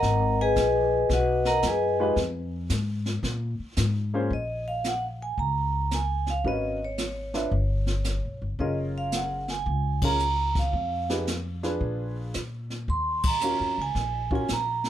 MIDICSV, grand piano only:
0, 0, Header, 1, 2, 480
1, 0, Start_track
1, 0, Tempo, 535236
1, 34, Time_signature, 4, 2, 24, 8
1, 13356, End_track
2, 0, Start_track
2, 0, Title_t, "Grand piano"
2, 0, Program_c, 0, 0
2, 1790, Note_on_c, 0, 56, 75
2, 1792, Note_on_c, 0, 63, 67
2, 1793, Note_on_c, 0, 65, 69
2, 1796, Note_on_c, 0, 67, 68
2, 1801, Note_on_c, 0, 71, 85
2, 1935, Note_off_c, 0, 56, 0
2, 1936, Note_off_c, 0, 63, 0
2, 1936, Note_off_c, 0, 65, 0
2, 1938, Note_off_c, 0, 67, 0
2, 1940, Note_off_c, 0, 71, 0
2, 3710, Note_on_c, 0, 58, 70
2, 3713, Note_on_c, 0, 65, 62
2, 3715, Note_on_c, 0, 68, 62
2, 3716, Note_on_c, 0, 61, 67
2, 3724, Note_on_c, 0, 72, 73
2, 3854, Note_off_c, 0, 58, 0
2, 3855, Note_off_c, 0, 65, 0
2, 3856, Note_off_c, 0, 68, 0
2, 3857, Note_off_c, 0, 61, 0
2, 3861, Note_off_c, 0, 72, 0
2, 5785, Note_on_c, 0, 61, 54
2, 5790, Note_on_c, 0, 66, 48
2, 5790, Note_on_c, 0, 70, 51
2, 5798, Note_on_c, 0, 71, 62
2, 6075, Note_off_c, 0, 61, 0
2, 6077, Note_off_c, 0, 66, 0
2, 6078, Note_off_c, 0, 70, 0
2, 6082, Note_off_c, 0, 71, 0
2, 6584, Note_on_c, 0, 62, 56
2, 6584, Note_on_c, 0, 65, 52
2, 6588, Note_on_c, 0, 71, 56
2, 6594, Note_on_c, 0, 76, 63
2, 6730, Note_off_c, 0, 62, 0
2, 6730, Note_off_c, 0, 65, 0
2, 6733, Note_off_c, 0, 71, 0
2, 6735, Note_off_c, 0, 76, 0
2, 7707, Note_on_c, 0, 61, 57
2, 7714, Note_on_c, 0, 65, 57
2, 7718, Note_on_c, 0, 68, 59
2, 7725, Note_on_c, 0, 70, 67
2, 8444, Note_off_c, 0, 61, 0
2, 8448, Note_off_c, 0, 65, 0
2, 8450, Note_off_c, 0, 68, 0
2, 8453, Note_off_c, 0, 70, 0
2, 8998, Note_on_c, 0, 61, 67
2, 9004, Note_on_c, 0, 65, 59
2, 9006, Note_on_c, 0, 68, 58
2, 9009, Note_on_c, 0, 70, 75
2, 9138, Note_off_c, 0, 61, 0
2, 9141, Note_off_c, 0, 65, 0
2, 9142, Note_off_c, 0, 68, 0
2, 9143, Note_off_c, 0, 70, 0
2, 9951, Note_on_c, 0, 63, 60
2, 9953, Note_on_c, 0, 67, 51
2, 9957, Note_on_c, 0, 71, 65
2, 9958, Note_on_c, 0, 68, 54
2, 10095, Note_off_c, 0, 63, 0
2, 10096, Note_off_c, 0, 67, 0
2, 10098, Note_off_c, 0, 68, 0
2, 10098, Note_off_c, 0, 71, 0
2, 10432, Note_on_c, 0, 62, 57
2, 10434, Note_on_c, 0, 65, 57
2, 10434, Note_on_c, 0, 68, 59
2, 10442, Note_on_c, 0, 71, 69
2, 11040, Note_off_c, 0, 62, 0
2, 11041, Note_off_c, 0, 65, 0
2, 11041, Note_off_c, 0, 68, 0
2, 11045, Note_off_c, 0, 71, 0
2, 12045, Note_on_c, 0, 61, 60
2, 12053, Note_on_c, 0, 65, 53
2, 12057, Note_on_c, 0, 66, 49
2, 12057, Note_on_c, 0, 70, 64
2, 12327, Note_off_c, 0, 61, 0
2, 12331, Note_off_c, 0, 65, 0
2, 12333, Note_off_c, 0, 66, 0
2, 12333, Note_off_c, 0, 70, 0
2, 12837, Note_on_c, 0, 61, 63
2, 12839, Note_on_c, 0, 65, 54
2, 12845, Note_on_c, 0, 66, 52
2, 12848, Note_on_c, 0, 70, 62
2, 12980, Note_off_c, 0, 61, 0
2, 12981, Note_off_c, 0, 65, 0
2, 12983, Note_off_c, 0, 66, 0
2, 12985, Note_off_c, 0, 70, 0
2, 13356, End_track
0, 0, End_of_file